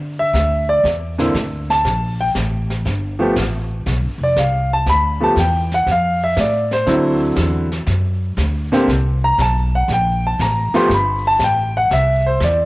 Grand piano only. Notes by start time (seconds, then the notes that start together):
0.19 E5
0.69 D5
1.18 D3 A#3 C4 E4
1.70 A5
2.21 G5
3.19 F3 A3 B3 G4
4.23 D5
4.39 F5
4.73 A5
4.90 B5
5.20 F3 A3 B3 G4 A5
5.39 G5
5.74 F#5
5.91 F5
6.24 E5
6.40 D5
6.73 C5
6.86 D3 F#3 C4 E4
8.72 D3 A#3 C4 G4
9.24 A#5
9.42 A5
9.75 F#5
9.93 G5
10.27 A5
10.42 A#5
10.74 F3 A3 B3 G4 C6
10.94 B5
11.27 A5
11.44 G5
11.77 F#5
11.93 E5
12.26 C5
12.44 D5